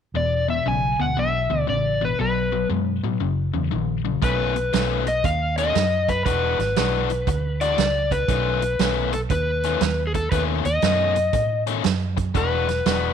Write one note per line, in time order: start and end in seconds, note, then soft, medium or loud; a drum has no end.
0.14 0.59 E1 medium
0.14 0.45 E2 medium
0.14 0.45 B2 medium
0.14 0.50 D5 medium
0.48 0.64 E2 medium
0.48 0.64 B2 medium
0.48 0.67 E5 medium
0.66 0.95 B1 medium
0.66 0.96 E2 medium
0.66 0.96 C#3 medium
0.66 1.01 G#5 medium
0.99 1.15 D2 medium
0.99 1.15 E2 medium
0.99 1.15 B2 medium
0.99 1.18 F#5 medium
1.17 1.46 B1 medium
1.17 1.47 E2 medium
1.17 1.47 B2 medium
1.17 1.69 E5 medium
1.50 1.66 D2 medium
1.50 1.66 E2 medium
1.50 1.66 B2 medium
1.67 2.13 A1 medium
1.67 1.98 E2 medium
1.67 1.98 C#3 medium
1.67 2.03 D5 medium
2.01 2.17 E2 medium
2.01 2.17 B2 medium
2.01 2.20 B4 medium
2.19 2.64 B1 medium
2.19 2.49 B2 medium
2.19 2.50 F#3 medium
2.19 2.68 B4 medium
2.52 2.68 B2 medium
2.52 2.68 F#3 medium
2.70 2.99 F#2 medium
2.70 3.00 B2 medium
2.70 3.00 G#3 medium
3.03 3.19 A2 medium
3.03 3.19 B2 medium
3.03 3.20 F#3 medium
3.20 3.50 F#1 medium
3.20 3.51 F#2 medium
3.20 3.51 C#3 medium
3.53 3.70 E2 medium
3.53 3.70 F#2 medium
3.53 3.70 C#3 medium
3.71 4.17 A#1 medium
3.71 4.02 F#2 medium
3.71 4.02 D#3 medium
4.05 4.21 F#2 medium
4.05 4.21 C#3 medium
4.22 4.69 B1 medium
4.22 4.56 B2 medium
4.22 4.55 D#3 medium
4.22 4.55 A3 medium
4.22 4.55 C#4 medium
4.22 5.10 B4 medium
4.22 kick loud
4.22 closed hi-hat medium
4.56 muted overdriven electric guitar stroke medium
4.56 closed hi-hat medium
4.73 5.21 B1 medium
4.73 5.07 B2 medium
4.73 5.06 D#3 medium
4.73 5.06 A3 medium
4.73 5.05 C#4 medium
4.73 snare loud
4.73 closed hi-hat medium
5.07 5.24 D#5 loud
5.07 muted overdriven electric guitar stroke soft
5.07 closed hi-hat medium
5.24 5.71 D#2 medium
5.24 5.58 F5 loud
5.24 muted overdriven electric guitar stroke soft
5.24 kick loud
5.24 closed hi-hat medium
5.58 5.74 B2 medium
5.58 5.74 D#3 medium
5.58 5.75 A3 medium
5.58 5.75 C#4 medium
5.58 6.10 D#5 loud
5.58 closed hi-hat medium
5.75 6.22 F#2 medium
5.75 muted overdriven electric guitar stroke medium
5.75 snare loud
5.75 closed hi-hat medium
6.08 6.24 B4 loud
6.08 muted overdriven electric guitar stroke soft
6.08 kick medium
6.08 closed hi-hat medium
6.25 6.56 E1 medium
6.25 6.59 E3 medium
6.25 6.60 G#3 medium
6.25 6.59 D4 medium
6.25 6.59 F#4 loud
6.25 7.65 B4 medium
6.25 kick loud
6.25 closed hi-hat medium
6.59 6.75 G#1 medium
6.59 muted overdriven electric guitar stroke medium
6.59 snare soft
6.59 closed hi-hat medium
6.76 7.24 B1 medium
6.76 7.10 E3 medium
6.76 7.10 G#3 medium
6.76 7.10 D4 medium
6.76 7.10 F#4 medium
6.76 snare loud
6.76 closed hi-hat medium
7.10 muted overdriven electric guitar stroke soft
7.10 closed hi-hat medium
7.27 7.74 D2 medium
7.27 muted overdriven electric guitar stroke soft
7.27 kick loud
7.27 closed hi-hat medium
7.61 7.77 E3 medium
7.61 7.78 G#3 medium
7.61 7.78 D4 medium
7.61 7.78 F#4 loud
7.61 8.13 D5 loud
7.61 closed hi-hat medium
7.78 8.25 C#2 medium
7.78 muted overdriven electric guitar stroke soft
7.78 snare loud
7.78 closed hi-hat medium
8.11 9.13 B4 medium
8.11 muted overdriven electric guitar stroke soft
8.11 kick medium
8.11 closed hi-hat medium
8.28 8.75 B1 medium
8.28 8.62 B2 medium
8.28 8.62 D#3 medium
8.28 8.62 A3 medium
8.28 8.61 C#4 medium
8.28 kick loud
8.28 closed hi-hat medium
8.62 muted overdriven electric guitar stroke medium
8.62 closed hi-hat medium
8.79 9.26 B1 medium
8.79 9.13 B2 medium
8.79 9.14 D#3 medium
8.79 9.13 A3 medium
8.79 9.13 C#4 medium
8.79 snare loud
8.79 closed hi-hat medium
9.13 9.19 A4 medium
9.13 muted overdriven electric guitar stroke medium
9.13 closed hi-hat medium
9.30 9.77 D#2 medium
9.30 10.02 B4 medium
9.30 muted overdriven electric guitar stroke soft
9.30 kick loud
9.30 closed hi-hat medium
9.63 9.81 B2 medium
9.63 9.81 D#3 medium
9.63 9.81 A3 loud
9.63 9.81 C#4 loud
9.63 closed hi-hat medium
9.81 10.28 D#2 medium
9.81 muted overdriven electric guitar stroke soft
9.81 snare loud
9.81 closed hi-hat medium
10.07 10.15 G#4 medium
10.14 10.31 A4 medium
10.14 muted overdriven electric guitar stroke medium
10.14 kick medium
10.14 closed hi-hat medium
10.32 10.62 D#2 loud
10.32 10.66 B2 medium
10.32 10.66 D#3 medium
10.32 10.65 A3 medium
10.32 10.65 C#4 medium
10.32 10.41 B4 medium
10.32 kick loud
10.32 closed hi-hat medium
10.65 10.81 D#2 medium
10.65 11.63 D#5 medium
10.65 muted overdriven electric guitar stroke soft
10.65 closed hi-hat medium
10.82 11.29 F#2 medium
10.82 11.16 B2 medium
10.82 11.16 D#3 medium
10.82 11.15 A3 medium
10.82 11.15 C#4 medium
10.82 snare loud
10.82 closed hi-hat medium
11.16 muted overdriven electric guitar stroke soft
11.16 closed hi-hat medium
11.33 11.80 A2 medium
11.33 muted overdriven electric guitar stroke soft
11.33 kick loud
11.33 closed hi-hat medium
11.67 11.83 B2 medium
11.67 11.83 D#3 medium
11.67 11.83 A3 medium
11.67 11.83 C#4 loud
11.67 closed hi-hat medium
11.84 12.31 F#2 medium
11.84 muted overdriven electric guitar stroke soft
11.84 snare loud
11.84 closed hi-hat medium
12.17 muted overdriven electric guitar stroke soft
12.17 kick medium
12.17 closed hi-hat medium
12.34 12.82 E1 medium
12.34 12.68 E3 medium
12.34 12.69 G#3 medium
12.34 12.68 D4 medium
12.34 12.68 F#4 medium
12.34 13.13 B4 medium
12.34 kick loud
12.34 closed hi-hat medium
12.69 muted overdriven electric guitar stroke medium
12.69 snare soft
12.69 closed hi-hat medium
12.86 13.13 E1 medium
12.86 13.13 E3 medium
12.86 13.13 G#3 medium
12.86 13.13 D4 medium
12.86 13.13 F#4 medium
12.86 snare loud
12.86 closed hi-hat medium